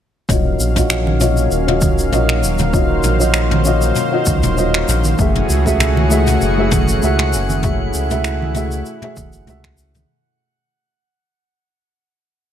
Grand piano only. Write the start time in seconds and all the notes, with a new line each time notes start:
0.29 C#4 F4 F#4 D#5
0.75 C#4 F4 F#4 D#5
1.20 C#4 F4 F#4 D#5
1.66 C#4 F4 F#4 D#5
2.12 C#4 F4 F#4 D#5
2.72 C#4 F4 F#4 D#5
3.19 C#4 F4 F#4 D#5
3.65 C#4 F4 F#4 D#5
4.11 C#4 F4 F#4 D#5
4.56 C#4 F4 F#4 D#5
5.19 A3 F#4 G#4 E5
5.65 A3 F#4 G#4 E5
6.10 A3 F#4 G#4 E5
6.57 A3 F#4 G#4 E5
7.02 A3 F#4 G#4 E5
7.62 A3 F#4 G#4 E5
8.10 A3 F#4 G#4 E5
8.54 A3 F#4 G#4 E5
9.01 A3 F#4 G#4 E5
9.47 A3 F#4 G#4 E5